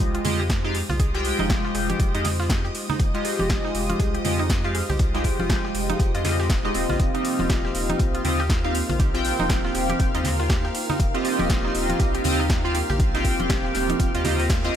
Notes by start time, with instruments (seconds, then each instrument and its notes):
Already playing: analog polysynth G#3 F4 G4 D#5, analog synth pad G#3 D#4 F4 G4 C5, ambient pad F4 C5, string machine D#5 D#6
0.00 analog synth bass C2, kick, closed hi-hat
0.15 synth arpeggio sound F4, closed hi-hat
0.24 analog synth bass F2, analog polysynth G#3 F4 G4 D#5, synth arpeggio sound G#4, closed hi-hat, open hi-hat, low conga
0.40 synth arpeggio sound G4
0.50 kick, snare, closed hi-hat
0.64 analog polysynth G#3 F4 G4 F5, synth arpeggio sound D#4, closed hi-hat
0.74 closed hi-hat, open hi-hat
0.89 analog synth bass C2, synth arpeggio sound F4, closed hi-hat, low conga
0.99 synth arpeggio sound G#4, kick, closed hi-hat
1.14 analog polysynth G#3 F4 G4 G5, synth arpeggio sound G4, snare, closed hi-hat
1.25 closed hi-hat, open hi-hat
1.39 analog synth bass F1, synth arpeggio sound D#4, high conga
1.50 kick, snare, closed hi-hat
1.64 synth arpeggio sound F4, snare
1.75 analog synth bass F1, synth arpeggio sound G#4, closed hi-hat, open hi-hat
1.90 synth arpeggio sound G4, closed hi-hat, high conga
2.00 analog synth bass F1, kick, closed hi-hat
2.14 analog synth bass F2, analog polysynth G#3 F4 G4 D#5, synth arpeggio sound D#4, closed hi-hat
2.24 snare, closed hi-hat, open hi-hat, low conga
2.40 synth arpeggio sound F4, snare
2.49 synth arpeggio sound G#4, kick, snare, closed hi-hat
2.65 synth arpeggio sound G4, closed hi-hat
2.75 closed hi-hat, open hi-hat
2.89 synth arpeggio sound D#4, snare, low conga
2.99 analog synth bass F1, kick, closed hi-hat
3.14 analog polysynth G#3 F4 G4 D#5, synth arpeggio sound F4, closed hi-hat
3.25 synth arpeggio sound G#4, closed hi-hat, open hi-hat
3.39 analog synth bass F1, synth arpeggio sound G4, high conga
3.49 kick, snare, closed hi-hat
3.65 synth arpeggio sound D#4, snare
3.75 analog synth bass F1, closed hi-hat, open hi-hat
3.90 synth arpeggio sound F4, closed hi-hat, high conga
4.00 analog synth bass C2, synth arpeggio sound G#4, kick, closed hi-hat
4.15 synth arpeggio sound G4, closed hi-hat
4.24 analog synth bass F2, analog polysynth G#3 F4 G4 D#5, closed hi-hat, open hi-hat, low conga
4.40 synth arpeggio sound D#4
4.50 kick, snare, closed hi-hat
4.64 analog polysynth G#3 F4 G4 F5, synth arpeggio sound F4, closed hi-hat
4.75 synth arpeggio sound G#4, closed hi-hat, open hi-hat
4.89 analog synth bass C2, synth arpeggio sound G4, closed hi-hat, low conga
4.99 kick, closed hi-hat
5.14 analog polysynth G#3 F4 G4 G5, synth arpeggio sound D#4, snare, closed hi-hat
5.24 kick, closed hi-hat, open hi-hat
5.39 analog synth bass F1, synth arpeggio sound F4, high conga
5.50 synth arpeggio sound G#4, kick, snare, closed hi-hat
5.64 synth arpeggio sound G4, snare
5.75 analog synth bass F1, closed hi-hat, open hi-hat
5.90 synth arpeggio sound D#4, closed hi-hat, high conga
6.00 analog synth bass F1, kick, closed hi-hat
6.14 analog synth bass F2, analog polysynth G#3 F4 G4 D#5, synth arpeggio sound F4, closed hi-hat
6.24 analog polysynth G#3 F4 G4 D#5, synth arpeggio sound G#4, snare, closed hi-hat, open hi-hat, low conga
6.40 synth arpeggio sound G4, snare
6.50 analog synth bass D#1, kick, snare, closed hi-hat
6.64 analog polysynth G#3 F4 G4 D#5, synth arpeggio sound D#4, closed hi-hat
6.74 analog synth bass D#1, analog synth pad A#3, analog polysynth C4 F4 G4 D#5, ambient pad D#4, closed hi-hat, open hi-hat
6.89 analog synth bass A#1, synth arpeggio sound F4, ambient pad A#4 F5, snare, low conga
6.99 analog synth bass D#1, string machine F5 F6, kick, closed hi-hat
7.14 analog polysynth C4 F4 G4 D#5, synth arpeggio sound D#4, closed hi-hat
7.24 closed hi-hat, open hi-hat
7.39 analog synth bass D#1, synth arpeggio sound F4, ambient pad G5, high conga
7.50 synth arpeggio sound G4, kick, snare, closed hi-hat
7.65 synth arpeggio sound G4, snare
7.75 analog synth bass D#1, closed hi-hat, open hi-hat
7.89 synth arpeggio sound D#4, closed hi-hat, high conga
7.99 analog synth bass A#1, kick, closed hi-hat
8.15 synth arpeggio sound F4, closed hi-hat
8.24 analog synth bass D#2, analog polysynth C4 F4 G4 D#5, synth arpeggio sound G4, closed hi-hat, open hi-hat, low conga
8.40 synth arpeggio sound G4
8.50 kick, snare, closed hi-hat
8.64 analog polysynth C4 F4 G4 F5, synth arpeggio sound D#4, closed hi-hat
8.75 closed hi-hat, open hi-hat
8.89 analog synth bass A#1, synth arpeggio sound F4, closed hi-hat, low conga
9.00 synth arpeggio sound G4, kick, closed hi-hat
9.14 analog polysynth C4 F4 G4 G5, synth arpeggio sound G4, snare, closed hi-hat
9.25 closed hi-hat, open hi-hat
9.40 analog synth bass D#1, synth arpeggio sound D#4, high conga
9.49 kick, snare, closed hi-hat
9.65 synth arpeggio sound F4, snare
9.75 analog synth bass D#1, synth arpeggio sound G4, closed hi-hat, open hi-hat
9.89 synth arpeggio sound G4, closed hi-hat, high conga
9.99 analog synth bass D#1, kick, closed hi-hat
10.14 analog synth bass D#2, analog polysynth C4 F4 G4 D#5, synth arpeggio sound D#4, closed hi-hat
10.25 snare, closed hi-hat, open hi-hat, low conga
10.39 synth arpeggio sound F4, snare
10.50 synth arpeggio sound G4, kick, snare, closed hi-hat
10.65 synth arpeggio sound G4, closed hi-hat
10.74 closed hi-hat, open hi-hat
10.90 synth arpeggio sound D#4, snare, low conga
11.00 analog synth bass D#1, kick, closed hi-hat
11.14 analog polysynth C4 F4 G4 D#5, synth arpeggio sound F4, closed hi-hat
11.25 synth arpeggio sound G4, closed hi-hat, open hi-hat
11.39 analog synth bass D#1, synth arpeggio sound G4, high conga
11.50 kick, snare, closed hi-hat
11.65 synth arpeggio sound D#4, snare
11.75 analog synth bass D#1, closed hi-hat, open hi-hat
11.89 synth arpeggio sound F4, closed hi-hat, high conga
12.00 analog synth bass A#1, synth arpeggio sound G4, kick, closed hi-hat
12.15 synth arpeggio sound G4, closed hi-hat
12.24 analog synth bass D#2, analog polysynth C4 F4 G4 D#5, closed hi-hat, open hi-hat, low conga
12.40 synth arpeggio sound D#4
12.49 kick, snare, closed hi-hat
12.64 analog polysynth C4 F4 G4 F5, synth arpeggio sound F4, closed hi-hat
12.74 synth arpeggio sound G4, closed hi-hat, open hi-hat
12.89 analog synth bass A#1, synth arpeggio sound G4, closed hi-hat, low conga
13.00 kick, closed hi-hat
13.14 analog polysynth C4 F4 G4 G5, synth arpeggio sound D#4, snare, closed hi-hat
13.25 kick, closed hi-hat, open hi-hat
13.40 analog synth bass D#1, synth arpeggio sound F4, closed hi-hat, high conga
13.50 synth arpeggio sound G4, kick, snare, closed hi-hat
13.65 synth arpeggio sound G4, snare
13.75 analog synth bass D#1, snare, closed hi-hat, open hi-hat
13.89 synth arpeggio sound D#4, closed hi-hat, high conga
13.99 analog synth bass D#1, kick, closed hi-hat
14.14 analog synth bass D#2, analog polysynth C4 F4 G4 D#5, synth arpeggio sound F4, closed hi-hat
14.24 analog polysynth C4 F4 G4 D#5, synth arpeggio sound D#4, snare, closed hi-hat, open hi-hat, low conga
14.40 synth arpeggio sound C5, snare, open hi-hat
14.50 kick, snare, closed hi-hat
14.64 analog polysynth C4 F4 G4 D#5, synth arpeggio sound F4, closed hi-hat